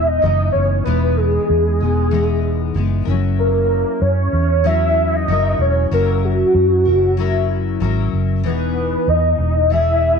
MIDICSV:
0, 0, Header, 1, 4, 480
1, 0, Start_track
1, 0, Tempo, 631579
1, 656, Time_signature, 4, 2, 24, 8
1, 7748, End_track
2, 0, Start_track
2, 0, Title_t, "Soft synth lead"
2, 0, Program_c, 0, 80
2, 52, Note_on_c, 0, 75, 125
2, 391, Note_off_c, 0, 75, 0
2, 396, Note_on_c, 0, 73, 96
2, 628, Note_off_c, 0, 73, 0
2, 639, Note_on_c, 0, 71, 95
2, 879, Note_on_c, 0, 68, 96
2, 890, Note_off_c, 0, 71, 0
2, 2327, Note_off_c, 0, 68, 0
2, 2569, Note_on_c, 0, 70, 94
2, 3049, Note_on_c, 0, 73, 116
2, 3060, Note_off_c, 0, 70, 0
2, 3540, Note_on_c, 0, 76, 117
2, 3551, Note_off_c, 0, 73, 0
2, 3919, Note_on_c, 0, 75, 124
2, 3931, Note_off_c, 0, 76, 0
2, 4263, Note_on_c, 0, 73, 106
2, 4275, Note_off_c, 0, 75, 0
2, 4500, Note_off_c, 0, 73, 0
2, 4510, Note_on_c, 0, 70, 89
2, 4727, Note_off_c, 0, 70, 0
2, 4746, Note_on_c, 0, 66, 106
2, 6152, Note_off_c, 0, 66, 0
2, 6422, Note_on_c, 0, 71, 91
2, 6905, Note_on_c, 0, 75, 104
2, 6917, Note_off_c, 0, 71, 0
2, 7379, Note_off_c, 0, 75, 0
2, 7384, Note_on_c, 0, 76, 112
2, 7748, Note_off_c, 0, 76, 0
2, 7748, End_track
3, 0, Start_track
3, 0, Title_t, "Steel-string acoustic guitar"
3, 0, Program_c, 1, 25
3, 0, Note_on_c, 1, 52, 57
3, 0, Note_on_c, 1, 56, 51
3, 0, Note_on_c, 1, 59, 58
3, 164, Note_off_c, 1, 52, 0
3, 167, Note_on_c, 1, 52, 52
3, 169, Note_off_c, 1, 56, 0
3, 178, Note_on_c, 1, 56, 55
3, 181, Note_off_c, 1, 59, 0
3, 190, Note_on_c, 1, 59, 55
3, 196, Note_on_c, 1, 63, 59
3, 647, Note_off_c, 1, 52, 0
3, 650, Note_off_c, 1, 56, 0
3, 650, Note_on_c, 1, 52, 64
3, 654, Note_off_c, 1, 59, 0
3, 659, Note_on_c, 1, 56, 65
3, 660, Note_off_c, 1, 63, 0
3, 663, Note_on_c, 1, 59, 73
3, 669, Note_on_c, 1, 63, 74
3, 1362, Note_off_c, 1, 63, 0
3, 1371, Note_on_c, 1, 63, 39
3, 1377, Note_off_c, 1, 56, 0
3, 1377, Note_off_c, 1, 59, 0
3, 1386, Note_on_c, 1, 59, 37
3, 1394, Note_off_c, 1, 52, 0
3, 1398, Note_on_c, 1, 56, 38
3, 1605, Note_on_c, 1, 52, 69
3, 1606, Note_off_c, 1, 56, 0
3, 1613, Note_off_c, 1, 63, 0
3, 1615, Note_on_c, 1, 56, 58
3, 1618, Note_off_c, 1, 59, 0
3, 1627, Note_on_c, 1, 59, 70
3, 1634, Note_on_c, 1, 63, 68
3, 2082, Note_off_c, 1, 52, 0
3, 2085, Note_on_c, 1, 52, 54
3, 2086, Note_off_c, 1, 56, 0
3, 2095, Note_on_c, 1, 56, 58
3, 2098, Note_off_c, 1, 59, 0
3, 2105, Note_off_c, 1, 63, 0
3, 2107, Note_on_c, 1, 59, 63
3, 2115, Note_on_c, 1, 63, 62
3, 2320, Note_on_c, 1, 70, 64
3, 2330, Note_off_c, 1, 52, 0
3, 2334, Note_off_c, 1, 63, 0
3, 2335, Note_off_c, 1, 56, 0
3, 2338, Note_on_c, 1, 64, 67
3, 2341, Note_off_c, 1, 59, 0
3, 2351, Note_on_c, 1, 61, 60
3, 2363, Note_on_c, 1, 54, 55
3, 3517, Note_off_c, 1, 54, 0
3, 3526, Note_on_c, 1, 54, 67
3, 3528, Note_off_c, 1, 70, 0
3, 3529, Note_off_c, 1, 61, 0
3, 3538, Note_on_c, 1, 61, 66
3, 3542, Note_off_c, 1, 64, 0
3, 3545, Note_on_c, 1, 64, 63
3, 3554, Note_on_c, 1, 70, 59
3, 4006, Note_off_c, 1, 54, 0
3, 4015, Note_off_c, 1, 61, 0
3, 4015, Note_on_c, 1, 54, 57
3, 4024, Note_on_c, 1, 61, 55
3, 4025, Note_off_c, 1, 70, 0
3, 4029, Note_off_c, 1, 64, 0
3, 4032, Note_on_c, 1, 64, 59
3, 4041, Note_on_c, 1, 70, 58
3, 4485, Note_off_c, 1, 54, 0
3, 4492, Note_off_c, 1, 61, 0
3, 4494, Note_on_c, 1, 54, 63
3, 4501, Note_on_c, 1, 61, 65
3, 4505, Note_off_c, 1, 70, 0
3, 4506, Note_off_c, 1, 64, 0
3, 4509, Note_on_c, 1, 64, 69
3, 4514, Note_on_c, 1, 70, 68
3, 5198, Note_off_c, 1, 70, 0
3, 5207, Note_on_c, 1, 70, 41
3, 5216, Note_off_c, 1, 54, 0
3, 5219, Note_off_c, 1, 61, 0
3, 5219, Note_off_c, 1, 64, 0
3, 5222, Note_on_c, 1, 64, 34
3, 5235, Note_on_c, 1, 61, 31
3, 5449, Note_on_c, 1, 54, 62
3, 5451, Note_off_c, 1, 61, 0
3, 5452, Note_off_c, 1, 70, 0
3, 5460, Note_off_c, 1, 64, 0
3, 5460, Note_on_c, 1, 61, 61
3, 5468, Note_on_c, 1, 64, 63
3, 5475, Note_on_c, 1, 70, 67
3, 5921, Note_off_c, 1, 54, 0
3, 5930, Note_on_c, 1, 54, 58
3, 5931, Note_off_c, 1, 61, 0
3, 5940, Note_on_c, 1, 61, 62
3, 5947, Note_off_c, 1, 70, 0
3, 5950, Note_off_c, 1, 64, 0
3, 5953, Note_on_c, 1, 64, 61
3, 5959, Note_on_c, 1, 70, 69
3, 6407, Note_off_c, 1, 54, 0
3, 6410, Note_on_c, 1, 52, 66
3, 6419, Note_off_c, 1, 61, 0
3, 6429, Note_off_c, 1, 70, 0
3, 6429, Note_on_c, 1, 59, 68
3, 6436, Note_off_c, 1, 64, 0
3, 6439, Note_on_c, 1, 63, 62
3, 6454, Note_on_c, 1, 68, 68
3, 7369, Note_off_c, 1, 52, 0
3, 7372, Note_on_c, 1, 52, 52
3, 7374, Note_off_c, 1, 59, 0
3, 7384, Note_on_c, 1, 59, 60
3, 7388, Note_off_c, 1, 68, 0
3, 7390, Note_off_c, 1, 63, 0
3, 7398, Note_on_c, 1, 68, 64
3, 7748, Note_off_c, 1, 52, 0
3, 7748, Note_off_c, 1, 59, 0
3, 7748, Note_off_c, 1, 68, 0
3, 7748, End_track
4, 0, Start_track
4, 0, Title_t, "Fingered electric bass"
4, 0, Program_c, 2, 33
4, 0, Note_on_c, 2, 28, 90
4, 146, Note_off_c, 2, 28, 0
4, 177, Note_on_c, 2, 30, 92
4, 369, Note_off_c, 2, 30, 0
4, 420, Note_on_c, 2, 30, 78
4, 610, Note_off_c, 2, 30, 0
4, 659, Note_on_c, 2, 28, 76
4, 1041, Note_off_c, 2, 28, 0
4, 1138, Note_on_c, 2, 40, 84
4, 1375, Note_on_c, 2, 28, 77
4, 1387, Note_off_c, 2, 40, 0
4, 2065, Note_off_c, 2, 28, 0
4, 2092, Note_on_c, 2, 30, 85
4, 2286, Note_off_c, 2, 30, 0
4, 2334, Note_on_c, 2, 30, 86
4, 2910, Note_off_c, 2, 30, 0
4, 3052, Note_on_c, 2, 42, 83
4, 3246, Note_off_c, 2, 42, 0
4, 3291, Note_on_c, 2, 40, 89
4, 3983, Note_off_c, 2, 40, 0
4, 4012, Note_on_c, 2, 30, 86
4, 4206, Note_off_c, 2, 30, 0
4, 4246, Note_on_c, 2, 28, 91
4, 4442, Note_off_c, 2, 28, 0
4, 4495, Note_on_c, 2, 30, 82
4, 4879, Note_off_c, 2, 30, 0
4, 4975, Note_on_c, 2, 42, 96
4, 5219, Note_on_c, 2, 30, 80
4, 5230, Note_off_c, 2, 42, 0
4, 5908, Note_off_c, 2, 30, 0
4, 5939, Note_on_c, 2, 32, 94
4, 6131, Note_off_c, 2, 32, 0
4, 6179, Note_on_c, 2, 30, 69
4, 6417, Note_off_c, 2, 30, 0
4, 6417, Note_on_c, 2, 28, 86
4, 6802, Note_off_c, 2, 28, 0
4, 6899, Note_on_c, 2, 40, 78
4, 7091, Note_off_c, 2, 40, 0
4, 7133, Note_on_c, 2, 28, 89
4, 7748, Note_off_c, 2, 28, 0
4, 7748, End_track
0, 0, End_of_file